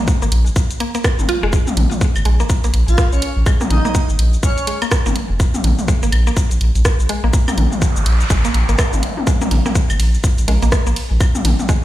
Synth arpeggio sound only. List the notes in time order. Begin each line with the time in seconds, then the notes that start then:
0.22 A#3
0.80 A#3
0.95 A#3
1.29 F4
1.43 G#3
2.25 G#3
2.40 A#3
2.64 A#3
3.46 G#3
3.61 A#3
3.85 A#3
4.67 G#3
4.82 A#3
5.06 A#3
5.88 G#3
6.03 A#3
6.27 A#3
7.09 G#3
7.24 A#3
7.48 A#3
8.30 G#3
8.45 A#3
8.69 A#3
9.27 G#3
9.41 A#3
9.66 A#3
10.48 G#3
10.62 A#3
10.87 A#3
11.69 G#3